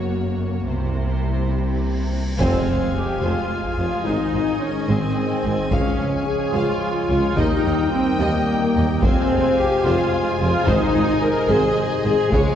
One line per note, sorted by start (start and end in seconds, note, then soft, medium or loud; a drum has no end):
0.00 0.68 F#1 soft
0.00 0.68 F#2 soft
0.00 2.07 A#3 soft
0.00 2.15 A#3 soft
0.00 0.65 F#4 soft
0.00 0.64 C#5 soft
0.68 2.16 C2 soft
0.68 2.16 C3 soft
0.68 2.07 E4 soft
0.68 2.15 E4 soft
0.68 2.15 C5 soft
0.68 cymbal swell soft
2.38 2.65 F1 medium
2.38 2.64 F2 medium
2.38 4.02 F3 medium
2.38 7.34 G#3 medium
2.38 5.68 G#3 medium
2.38 2.90 C4 medium
2.38 7.34 G#4 medium
2.38 2.65 C5 medium
2.38 4.01 F5 soft
2.38 4.02 F5 medium
2.38 5.68 G#5 medium
2.38 taiko soft
2.38 impact soft
2.66 2.77 F1 soft
2.66 2.75 F1 soft
2.66 2.75 F2 soft
2.66 2.75 C5 soft
2.93 3.21 G4 soft
2.93 3.22 G4 soft
3.22 3.30 F1 soft
3.22 3.33 F1 soft
3.22 3.30 F2 medium
3.22 3.76 F4 soft
3.22 3.77 F4 soft
3.22 3.49 C5 soft
3.64 taiko soft
3.77 3.89 F1 soft
3.77 3.86 F1 soft
3.77 3.86 F2 soft
3.77 4.05 F4 medium
3.77 4.06 F4 soft
3.77 3.87 C5 soft
4.05 4.14 G#1 soft
4.05 4.17 G#1 soft
4.05 4.14 G#2 soft
4.05 5.69 D#3 soft
4.05 4.61 D#4 medium
4.05 4.61 D#4 soft
4.05 4.32 C5 soft
4.05 5.72 D#5 soft
4.05 5.69 D#5 soft
4.33 4.41 G#1 soft
4.33 4.44 G#1 soft
4.33 4.42 G#2 soft
4.33 4.42 C5 soft
4.61 4.89 C#4 soft
4.88 4.97 G#1 soft
4.88 5.00 G#1 soft
4.88 4.96 G#2 medium
4.88 5.71 C4 medium
4.88 5.72 C4 soft
4.88 5.14 C5 soft
5.44 5.52 G#1 soft
5.44 5.56 G#1 soft
5.44 5.52 G#2 soft
5.44 5.52 C5 soft
5.72 5.80 C#2 soft
5.72 5.83 C#2 medium
5.72 5.80 C#2 soft
5.72 7.37 F3 soft
5.72 7.34 G#3 medium
5.72 6.26 C#4 medium
5.72 7.38 C#5 soft
5.72 7.37 F5 soft
5.72 5.98 F5 medium
5.72 7.34 G#5 soft
5.72 taiko medium
5.99 6.07 C#2 soft
5.99 6.11 C#2 soft
5.99 6.08 F5 soft
6.27 6.54 G#4 soft
6.27 6.55 G#4 medium
6.53 6.62 C#2 medium
6.53 6.66 C#2 soft
6.53 7.08 F4 medium
6.53 6.81 F5 medium
7.09 7.18 C#2 soft
7.09 7.21 C#2 soft
7.09 7.37 F4 medium
7.09 7.18 F5 soft
7.36 7.45 D#2 soft
7.36 7.45 D#2 medium
7.36 7.48 D#2 medium
7.36 8.99 D#3 soft
7.36 8.99 G3 medium
7.36 9.02 A#3 medium
7.36 7.92 D#4 medium
7.36 9.02 G4 medium
7.36 9.03 D#5 soft
7.36 7.63 D#5 medium
7.36 9.02 G5 soft
7.36 9.03 G5 soft
7.36 9.03 G5 medium
7.36 taiko medium
7.64 7.72 D#2 soft
7.64 7.76 D#2 soft
7.64 7.73 D#2 soft
7.64 7.74 D#5 soft
7.91 8.19 C4 medium
7.91 8.19 C4 soft
8.18 8.31 D#2 medium
8.18 8.28 D#2 medium
8.18 9.00 A#3 medium
8.18 8.84 A#3 medium
8.18 8.46 D#5 medium
8.76 8.87 D#2 medium
8.76 8.84 D#2 soft
8.76 8.84 D#2 medium
8.76 8.84 D#5 soft
9.01 9.13 F1 medium
9.01 9.11 F1 medium
9.01 9.11 F2 medium
9.01 12.14 C3 medium
9.01 12.14 G#3 medium
9.01 12.55 G#3 medium
9.01 9.56 C4 medium
9.01 10.68 F4 medium
9.01 9.28 C5 medium
9.01 12.33 C5 medium
9.01 10.68 F5 medium
9.01 12.29 G#5 medium
9.01 12.55 G#5 medium
9.01 taiko medium
9.30 9.41 F1 soft
9.30 9.38 F1 medium
9.30 9.39 F2 medium
9.30 9.39 C5 soft
9.57 9.85 G4 medium
9.85 9.96 F1 medium
9.85 9.93 F1 medium
9.85 9.93 F2 medium
9.85 10.38 F4 medium
9.85 10.39 F4 medium
9.85 10.11 C5 medium
10.40 10.51 F1 medium
10.40 10.48 F1 medium
10.40 10.48 F2 medium
10.40 10.67 F4 medium
10.40 10.48 C5 medium
10.67 10.78 G#1 medium
10.67 10.75 G#1 medium
10.67 10.76 G#2 medium
10.67 11.22 D#4 medium
10.67 12.33 D#4 medium
10.67 11.23 D#4 medium
10.67 10.93 C5 medium
10.67 12.29 D#5 medium
10.67 taiko medium
10.94 11.02 G#1 soft
10.94 11.06 G#1 soft
10.94 11.03 G#2 medium
10.94 11.03 C5 soft
11.21 11.49 A#4 medium
11.21 11.51 A#4 medium
11.48 11.57 G#1 medium
11.48 11.61 G#1 medium
11.48 11.57 G#2 medium
11.48 12.02 G#4 medium
11.48 12.03 G#4 medium
11.48 11.76 C5 medium
12.03 12.16 G#1 soft
12.03 12.13 G#1 medium
12.03 12.12 G#2 medium
12.03 12.31 G#4 medium
12.03 12.32 G#4 medium
12.03 12.14 C5 medium
12.30 12.43 C#2 medium
12.30 12.41 C#2 medium
12.30 12.40 C#3 medium
12.30 12.55 F3 medium
12.30 12.55 G#3 medium
12.30 12.55 F4 medium
12.30 12.55 C#5 medium
12.30 12.55 F5 medium
12.30 12.55 G#5 medium
12.30 taiko medium